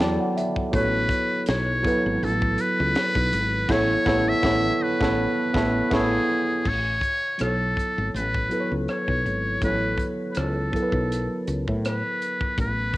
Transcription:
0.00 0.17 E2 medium
0.00 0.71 F#3 medium
0.00 0.73 B3 medium
0.00 0.74 D#4 medium
0.00 0.74 E4 medium
0.00 0.75 A4 medium
0.00 0.02 D5 medium
0.00 0.37 D5 loud
0.00 0.28 D5 medium
0.00 0.18 G5 medium
0.00 0.74 A5 medium
0.00 0.74 B5 medium
0.00 snare loud
0.00 closed hi-hat medium
0.20 0.35 F#5 medium
0.37 0.71 E5 medium
0.37 closed hi-hat medium
0.56 kick medium
0.71 1.07 A1 loud
0.71 0.99 F#3 medium
0.71 1.00 B3 medium
0.71 1.00 E4 medium
0.71 1.01 A4 medium
0.71 1.44 B4 loud
0.71 kick loud
0.71 closed hi-hat medium
0.76 1.01 C#5 medium
1.09 kick medium
1.09 closed hi-hat medium
1.46 1.81 B1 medium
1.46 2.25 C#5 medium
1.46 snare loud
1.46 closed hi-hat medium
1.82 2.36 F#3 medium
1.82 2.37 B3 medium
1.82 2.38 E4 medium
1.82 2.38 A4 medium
1.82 kick medium
1.87 2.39 B4 medium
1.87 closed hi-hat medium
2.06 2.20 G#1 loud
2.22 2.55 A1 loud
2.22 2.62 A4 medium
2.22 closed hi-hat medium
2.42 kick medium
2.58 3.73 B4 loud
2.58 closed hi-hat medium
2.80 2.94 C#2 medium
2.95 snare loud
2.95 closed hi-hat medium
3.15 3.31 B1 medium
3.15 kick loud
3.33 3.69 G#1 medium
3.33 closed hi-hat medium
3.69 3.95 A1 loud
3.69 3.95 B3 loud
3.69 3.95 E4 loud
3.69 3.96 A4 loud
3.69 4.30 C#5 loud
3.69 3.96 C#5 loud
3.69 kick loud
3.69 snare loud
3.69 crash medium
4.05 4.32 A1 loud
4.05 4.31 B3 loud
4.05 4.32 E4 loud
4.05 4.33 A4 loud
4.05 4.33 C#5 loud
4.05 kick loud
4.05 snare loud
4.29 4.84 E5 loud
4.42 4.69 A1 loud
4.42 4.68 B3 loud
4.42 4.69 E4 loud
4.42 4.70 A4 loud
4.42 4.70 C#5 loud
4.42 kick loud
4.42 snare loud
4.83 5.93 B4 medium
5.00 5.25 A1 loud
5.00 5.25 B3 loud
5.00 5.25 E4 loud
5.00 5.26 A4 loud
5.00 5.27 C#5 medium
5.00 kick loud
5.00 snare loud
5.54 5.81 A1 loud
5.54 5.80 B3 loud
5.54 5.80 E4 loud
5.54 5.81 A4 loud
5.54 5.82 C#5 medium
5.54 kick loud
5.54 snare loud
5.90 6.18 A1 loud
5.90 6.17 B3 loud
5.90 6.17 E4 loud
5.90 6.18 A4 medium
5.90 6.19 C#5 loud
5.90 kick loud
5.90 snare loud
5.90 crash medium
5.96 6.70 G#4 loud
6.66 7.00 A1 medium
6.66 7.41 C#5 loud
6.66 kick loud
6.66 crash medium
7.01 kick medium
7.01 closed hi-hat medium
7.38 7.74 B1 medium
7.38 8.43 F#3 medium
7.38 8.44 B3 medium
7.38 8.44 E4 medium
7.38 8.45 A4 soft
7.38 cross-stick loud
7.38 closed hi-hat medium
7.43 8.11 A4 medium
7.43 8.46 C#5 medium
7.77 kick medium
7.77 closed hi-hat medium
7.98 8.13 G#1 medium
8.14 8.48 A1 medium
8.14 8.74 B4 medium
8.14 closed hi-hat medium
8.34 kick medium
8.49 9.03 F#3 medium
8.49 9.04 B3 medium
8.49 9.04 E4 medium
8.49 9.05 A4 medium
8.49 closed hi-hat medium
8.54 8.59 B4 medium
8.60 9.09 C#5 medium
8.72 8.86 C#2 medium
8.88 9.59 C#5 medium
8.88 cross-stick medium
8.88 closed hi-hat medium
9.08 9.24 B1 medium
9.08 kick medium
9.26 9.59 G#1 medium
9.26 closed hi-hat medium
9.61 9.96 A1 medium
9.61 9.88 F#3 medium
9.61 9.89 B3 medium
9.61 9.89 E4 medium
9.61 9.90 A4 medium
9.61 10.08 B4 medium
9.61 kick medium
9.61 closed hi-hat medium
9.65 9.90 C#5 medium
9.98 kick medium
9.98 closed hi-hat medium
10.32 10.40 B4 soft
10.32 closed hi-hat medium
10.37 10.70 C#2 medium
10.37 11.48 A4 medium
10.37 cross-stick loud
10.71 11.25 F#3 medium
10.71 11.26 B3 medium
10.71 11.27 E4 medium
10.71 11.27 A4 medium
10.71 kick medium
10.76 10.81 A#4 medium
10.76 closed hi-hat medium
10.82 11.31 B4 medium
10.92 11.27 B1 medium
10.92 kick medium
11.12 closed hi-hat medium
11.47 11.66 C#2 medium
11.47 closed hi-hat medium
11.68 12.02 A2 medium
11.68 kick medium
11.85 12.56 B4 medium
11.85 cross-stick medium
11.85 closed hi-hat medium
12.22 closed hi-hat medium
12.41 kick medium
12.58 12.92 A1 loud
12.58 12.97 B4 medium
12.58 kick medium
12.58 closed hi-hat medium
12.94 kick medium

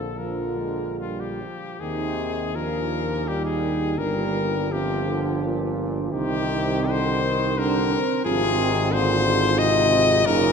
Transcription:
0.00 1.43 A#1 medium
0.00 0.17 D3 medium
0.00 0.16 F3 medium
0.00 0.17 F4 medium
0.00 0.19 A4 medium
0.18 1.44 D3 medium
0.18 0.59 F3 medium
0.18 1.44 F4 medium
0.18 0.99 A#4 medium
0.58 1.01 G#3 medium
1.00 1.43 G3 medium
1.00 1.22 F4 medium
1.20 1.82 G4 medium
1.41 1.79 F3 medium
1.80 4.00 D#2 medium
1.80 2.56 C3 medium
1.80 2.56 D#3 medium
1.80 2.51 D#4 medium
1.80 2.57 G#4 loud
2.54 3.98 A#2 medium
2.54 3.26 F3 medium
2.54 3.27 D4 medium
2.54 3.29 A#4 loud
3.26 3.96 G3 medium
3.26 3.98 D#4 medium
3.26 3.44 G4 loud
3.45 4.00 G#4 medium
3.98 6.13 G1 medium
3.98 4.70 A#2 medium
3.98 4.73 G3 medium
3.98 4.70 D4 medium
3.98 4.74 A#4 loud
4.71 5.08 C3 medium
4.71 6.15 F3 medium
4.71 6.10 D4 medium
4.71 5.44 G4 medium
5.07 5.45 D3 medium
5.43 6.14 A#2 medium
6.12 7.96 C2 medium
6.12 6.91 C3 medium
6.12 7.40 D#3 medium
6.12 6.49 D#4 medium
6.12 6.91 G4 loud
6.50 7.55 D#4 medium
6.89 7.25 D3 medium
6.89 7.60 C5 loud
7.24 7.59 D#3 medium
7.57 8.02 D3 medium
7.57 8.00 G3 medium
7.57 7.91 D4 medium
7.57 8.24 A#4 loud
7.92 8.25 C4 loud
8.24 10.28 G#1 loud
8.24 8.93 C3 medium
8.24 8.60 F3 medium
8.24 10.26 F4 medium
8.24 8.94 G#4 loud
8.59 8.92 D#3 loud
8.91 9.27 A#2 medium
8.91 9.60 D3 loud
8.91 9.60 C5 loud
9.25 10.25 G#2 medium
9.58 10.28 C3 medium
9.58 10.27 D#5 loud
10.25 10.52 F#1 loud
10.25 10.52 A#2 loud
10.25 10.52 C#3 loud
10.25 10.52 D#4 medium
10.25 10.52 A#4 loud

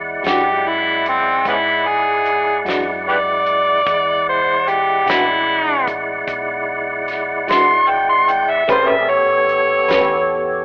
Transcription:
0.00 0.21 E2 medium
0.00 3.82 G#3 medium
0.00 3.82 E4 medium
0.00 3.82 D5 medium
0.00 3.82 F#5 medium
0.23 1.41 F#2 medium
0.23 0.49 E3 soft
0.23 0.49 G#3 medium
0.23 0.49 D4 soft
0.23 0.48 F#4 medium
0.23 snare medium
0.23 closed hi-hat medium
0.27 0.70 G4 medium
0.69 1.06 E4 medium
1.06 1.46 C4 medium
1.06 closed hi-hat medium
1.45 2.62 G#2 medium
1.45 1.56 B3 medium
1.45 1.56 C#4 medium
1.45 1.90 E4 medium
1.45 kick medium
1.45 closed hi-hat medium
1.88 2.65 G#4 medium
2.26 closed hi-hat soft
2.65 3.83 F#2 medium
2.65 2.91 E3 soft
2.65 2.90 G#3 soft
2.65 2.90 D4 medium
2.65 2.90 F#4 medium
2.65 snare medium
2.65 closed hi-hat medium
3.09 3.15 G4 medium
3.09 3.17 B4 medium
3.09 4.24 D5 medium
3.46 closed hi-hat soft
3.86 5.04 E2 medium
3.86 8.64 G#3 medium
3.86 8.64 E4 medium
3.86 8.64 D5 medium
3.86 8.64 F#5 medium
3.86 kick medium
3.86 closed hi-hat medium
4.29 4.70 C5 medium
4.68 5.07 G4 medium
4.68 closed hi-hat medium
5.06 6.24 A1 medium
5.06 5.32 E3 soft
5.06 5.32 G#3 medium
5.06 5.31 D4 medium
5.06 5.86 E4 loud
5.06 5.31 F#4 medium
5.06 snare medium
5.06 closed hi-hat medium
5.87 kick medium
5.87 closed hi-hat medium
6.27 7.44 B1 medium
6.27 kick medium
6.27 closed hi-hat medium
7.08 snare soft
7.08 closed hi-hat medium
7.48 8.64 G#1 medium
7.48 7.73 E3 soft
7.48 7.72 G#3 medium
7.48 7.72 D4 medium
7.48 7.72 F#4 medium
7.48 7.91 C6 medium
7.48 snare medium
7.48 closed hi-hat medium
7.90 8.08 G5 medium
8.09 8.32 C6 medium
8.29 8.52 G5 medium
8.29 closed hi-hat medium
8.50 8.68 E5 medium
8.68 9.85 A1 medium
8.68 8.92 A3 medium
8.68 9.08 C4 medium
8.68 8.93 C#4 medium
8.68 8.93 G4 medium
8.68 9.09 G#4 medium
8.68 9.08 A#4 medium
8.68 8.93 B4 medium
8.68 8.92 C5 medium
8.68 9.09 D5 medium
8.68 kick medium
8.68 closed hi-hat medium
8.90 9.11 E5 medium
9.09 10.65 B3 medium
9.09 10.65 G4 medium
9.09 10.65 A4 medium
9.09 10.65 C#5 medium
9.09 10.65 C#5 loud
9.49 closed hi-hat medium
9.88 10.65 E2 medium
9.88 10.13 A3 soft
9.88 10.13 C#4 medium
9.88 10.13 G4 medium
9.88 10.12 B4 medium
9.88 snare medium
9.88 closed hi-hat medium

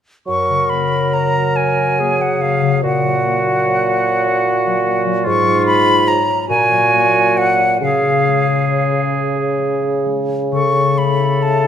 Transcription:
0.27 2.87 F#2 soft
0.27 2.84 F#3 soft
0.27 2.01 A#4 soft
0.27 0.71 C#6 medium
0.49 2.18 C#3 soft
0.70 1.97 A#3 soft
0.70 1.15 B5 medium
0.93 1.35 F#4 soft
1.14 1.56 C#5 soft
1.14 1.58 A#5 soft
1.56 3.63 C#5 soft
1.56 2.23 G#5 soft
1.78 3.43 F#4 soft
1.99 2.39 A#3 soft
1.99 2.83 G#4 soft
2.19 2.60 C#3 soft
2.19 2.43 F#5 soft
2.40 3.23 A#3 soft
2.40 2.84 F5 soft
2.61 2.86 C#3 soft
2.82 5.29 A#2 soft
2.82 5.28 A#2 soft
2.82 5.26 F#4 soft
2.82 5.03 F#5 medium
3.03 4.65 F#3 soft
3.24 4.45 A#3 soft
3.44 3.83 F#4 soft
3.64 4.04 C#5 soft
3.85 4.24 F#4 soft
4.05 6.06 C#5 soft
4.25 5.29 F#4 soft
4.46 4.85 A#3 soft
4.66 5.04 F#3 soft
4.86 5.29 A#3 soft
5.06 5.29 F#3 soft
5.24 6.52 G#2 medium
5.24 6.22 G#2 soft
5.24 6.22 F4 medium
5.24 5.66 C#6 medium
5.46 6.53 G#3 soft
5.65 6.52 B3 soft
5.65 6.09 B5 medium
5.86 6.27 F4 soft
6.07 7.35 C#5 soft
6.07 6.49 A#5 medium
6.28 6.52 F4 soft
6.48 7.85 A#2 soft
6.48 7.78 A#2 soft
6.48 7.77 F#4 soft
6.48 7.39 G#5 medium
6.70 7.85 F#3 soft
6.91 7.84 A#3 soft
7.14 7.57 F#4 soft
7.36 8.68 C#5 soft
7.36 7.81 F#5 medium
7.58 7.85 F#4 soft
7.81 11.67 C#3 soft
7.81 10.50 C#3 soft
7.81 10.15 G#4 soft
7.81 9.12 F5 soft
8.03 9.81 C#4 soft
8.25 9.57 G#3 soft
8.47 8.90 G#4 soft
8.69 9.12 C#5 soft
8.91 9.34 G#4 soft
9.13 11.67 C#5 soft
9.35 10.55 G#4 soft
9.58 10.04 G#3 soft
9.82 10.28 C#4 soft
10.06 10.56 G#3 soft
10.29 10.73 C#4 soft
10.52 11.67 C#3 soft
10.52 11.67 A4 soft
10.52 11.00 C#6 soft
10.74 11.67 C#4 soft
10.96 11.67 A3 soft
10.96 11.44 B5 medium
11.19 11.62 E4 soft
11.41 11.67 E5 soft
11.41 11.67 A5 soft
11.63 11.67 E4 soft

